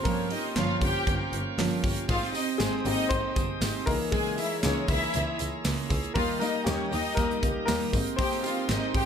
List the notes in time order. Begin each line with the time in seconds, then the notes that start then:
Already playing: C4 A#4 C5 F5 G5 C#6
0.03 G2 F3 A#3 C#4 F4 G4 A#4 C#5, kick, hi-hat pedal, open hi-hat
0.30 A#3 C#4 D#4 F4 G4 D#5, hi-hat pedal, open hi-hat
0.56 G1 G2 F3 A#3 C#4 F4 G4 F5, snare, clap, hi-hat pedal, open hi-hat
0.81 G1 A#3 C#4 F4 G4 G5, kick, hi-hat pedal, open hi-hat
1.06 G1 A#3 C#4 F4 G4, kick, hi-hat pedal, open hi-hat
1.33 G1, hi-hat pedal, open hi-hat
1.58 G1 G2 F3 A#3 C#4 F4 G4, snare, clap, hi-hat pedal, open hi-hat
1.71 open hi-hat
1.83 G1 A#3 C#4 F4 G4, kick, hi-hat pedal, open hi-hat
1.96 hi-hat pedal
2.08 G#1 G#3 C4 D#4 F4 G4 C5 D#5 F5 D#6, kick, hi-hat pedal, open hi-hat, tambourine
2.22 snare
2.33 C4 D#4 G4 D#5, hi-hat pedal, open hi-hat, tambourine
2.58 G#1 G#3 C4 D#4 G4 G#4 C5, snare, clap, hi-hat pedal, open hi-hat, tambourine
2.85 G#1 A#3 C4 D#4 G4 D#5, hi-hat pedal, open hi-hat, tambourine
3.09 G#1 G#3 C4 D#4 C5, kick, hi-hat pedal, open hi-hat, tambourine
3.13 G4
3.36 G1, kick, hi-hat pedal, open hi-hat, tambourine
3.61 G#1 G#3 C4 D#4 G4, snare, clap, hi-hat pedal, open hi-hat, tambourine
3.86 C#2 E3 A#3 D#4 E4 G#4 A#4 C#5 A#5 E6, kick, hi-hat pedal, open hi-hat, tambourine
4.11 C#3 G#3 A#3 E4 G#4 G#5, kick, hi-hat pedal, open hi-hat, tambourine
4.37 A#3 E4 G#4 E5, hi-hat pedal, open hi-hat, tambourine
4.63 C#2 C#3 E3 G#3 A#3 C#4 D#4 E4 G#4 C#5, snare, clap, hi-hat pedal, open hi-hat, tambourine
4.88 C#2 A#3 E4 G#4 E5, kick, hi-hat pedal, open hi-hat, tambourine
5.13 C#2 G#3 A#3 E4 G#4, hi-hat pedal, open hi-hat, tambourine
5.39 C#2, hi-hat pedal, open hi-hat, tambourine
5.64 C#2 C#3 G#3 A#3 E4 G#4, snare, clap, hi-hat pedal, open hi-hat, tambourine
5.77 open hi-hat
5.89 C#2 A#3 E4 G#4, kick, hi-hat pedal, open hi-hat, tambourine
6.03 hi-hat pedal
6.14 D#2 D#3 G3 A#3 D#4 F4 G4 A#4 D#5 F5 A#5 D#6, kick, hi-hat pedal, open hi-hat
6.39 G3 A#3 D#4 G4 A#4 D#5, hi-hat pedal, open hi-hat, tambourine
6.43 A#3
6.64 D#2 D#3 G3 A#3 C#4 D#4 G4 C#5, snare, clap, hi-hat pedal, open hi-hat, tambourine
6.68 G4
6.91 D#2 A#3 D#4 G4 D#5, hi-hat pedal, open hi-hat, tambourine
7.05 open hi-hat
7.15 D#2 G3 A#3 A#4, kick, hi-hat pedal, open hi-hat, tambourine
7.19 D#4 G4
7.30 hi-hat pedal
7.42 C#2 G3 A#3 D#4, kick, hi-hat pedal, open hi-hat, tambourine
7.66 D#2 D#3 G3 A#3 D#4 A#4, snare, clap, hi-hat pedal, open hi-hat, tambourine
7.70 G4
7.81 open hi-hat
7.92 G#1 G#3 C4 D#4 G4 G5 C6, kick, hi-hat pedal, open hi-hat, tambourine
8.06 hi-hat pedal
8.16 G#3 A#3 C4 D#4 G4 C5 G5, kick, hi-hat pedal, open hi-hat, tambourine
8.21 G4
8.31 snare
8.44 C4 D#4 F4 G4 F5, hi-hat pedal, open hi-hat, tambourine
8.69 G#1 G#3 C4 D#4 G4 D#5, snare, clap, hi-hat pedal, open hi-hat, tambourine
8.94 G#1 C4 D#4 G4 G5, kick, hi-hat pedal, open hi-hat